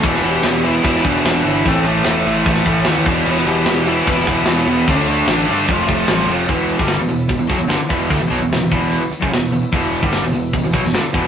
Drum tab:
CC |x-x-x-x-x-x-x-x-|x-x-x-x-x-x-x-x-|x-x-x-x-x-x-x-x-|x-x-x-x-x-x-x-x-|
HH |----------------|----------------|----------------|----------------|
SD |-o--o----o--o---|----o----o--o---|-o--o----o--o---|-o--o-------o---|
BD |o-------o-o-----|o-------o-o---o-|--------o-o-----|o-------o-o-----|

CC |----------------|----------------|----------------|
HH |o-o-o-o-o-o-o-o-|o-o-o-o-o-o-o-o-|o-o-o-o-o-o-o-o-|
SD |---oo-------o---|----o-------o---|----o------oo---|
BD |o--o----o-o---o-|o-----o----o----|o--o----o-o---o-|